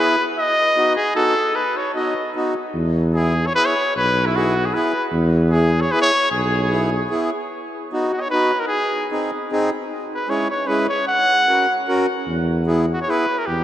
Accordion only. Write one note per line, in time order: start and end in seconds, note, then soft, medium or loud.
0.00 0.16 B3 medium
0.00 0.16 E4 medium
0.00 0.16 G#4 medium
0.76 0.95 B3 medium
0.76 0.95 D#4 soft
0.76 0.95 F#4 medium
1.15 1.34 B3 medium
1.15 1.34 D#4 medium
1.15 1.34 F#4 medium
1.95 2.14 B3 medium
1.95 2.14 D#4 soft
1.95 2.14 F#4 medium
2.36 2.54 B3 medium
2.36 2.54 D#4 medium
2.36 2.54 F#4 medium
3.14 3.34 B3 medium
3.14 3.34 E4 medium
3.14 3.34 G#4 medium
3.54 3.74 B3 medium
3.54 3.74 E4 medium
3.54 3.74 G#4 medium
4.36 4.54 B3 soft
4.36 4.54 E4 medium
4.36 4.54 G#4 medium
4.74 4.92 B3 medium
4.74 4.93 E4 medium
4.74 4.93 G#4 medium
5.52 5.71 B3 medium
5.52 5.71 E4 medium
5.52 5.71 G#4 medium
5.92 6.10 B3 medium
5.92 6.10 E4 medium
5.92 6.11 G#4 medium
6.70 6.89 B3 medium
6.70 6.90 E4 medium
6.70 6.90 G#4 medium
7.10 7.30 B3 medium
7.10 7.31 E4 medium
7.10 7.30 G#4 medium
7.92 8.11 B3 medium
7.92 8.12 D#4 soft
7.92 8.12 F#4 medium
8.32 8.51 B3 medium
8.32 8.51 D#4 medium
8.32 8.51 F#4 medium
9.11 9.31 C4 medium
9.11 9.30 D#4 soft
9.11 9.31 G#4 medium
9.52 9.70 C4 medium
9.52 9.70 D#4 medium
9.52 9.70 G#4 medium
10.28 10.47 G#3 medium
10.28 10.47 C#4 soft
10.28 10.48 E4 medium
10.28 10.48 G#4 medium
10.68 10.87 G#3 medium
10.68 10.87 C#4 medium
10.68 10.87 E4 medium
10.68 10.87 G#4 medium
11.48 11.66 C#4 medium
11.48 11.66 F#4 soft
11.48 11.66 A#4 soft
11.88 12.06 C#4 medium
11.88 12.06 F#4 medium
11.88 12.06 A#4 medium
12.66 12.85 B3 medium
12.66 12.86 E4 medium
12.66 12.86 G#4 medium
13.08 13.26 B3 medium
13.08 13.26 E4 medium
13.08 13.26 G#4 medium